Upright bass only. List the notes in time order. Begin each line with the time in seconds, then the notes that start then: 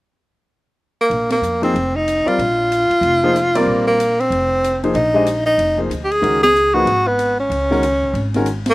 1.10 A#1
1.41 F2
1.74 F1
2.26 muted upright bass stroke
2.38 A#1
2.90 muted upright bass stroke
3.01 F1
3.66 A#1
4.30 F1
4.94 A#1
5.58 F1
5.90 D2
6.22 C#2
6.85 G#1
7.50 C#2
8.13 G#1